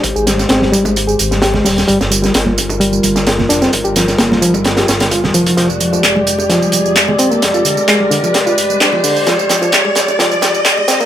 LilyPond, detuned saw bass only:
\new Staff \with { instrumentName = "Detuned saw bass" } { \clef bass \time 4/4 \key f \dorian \tempo 4 = 130 aes,,16 aes,,8. aes,,4. aes,,4 ees,,16 r16 | g,,16 g,,8. g,,4. g,,4 f,,16 r16 | g,,16 g,,8. g,,4. g,,4 f,,16 r16 | f,,16 f,,8. f,,4. f,,4 d,,16 r16 |
f,,16 f,,8. f,,4. f,,4 d,,16 r16 | f,,16 f,,8. f,,4. f,,4 d,,16 r16 | }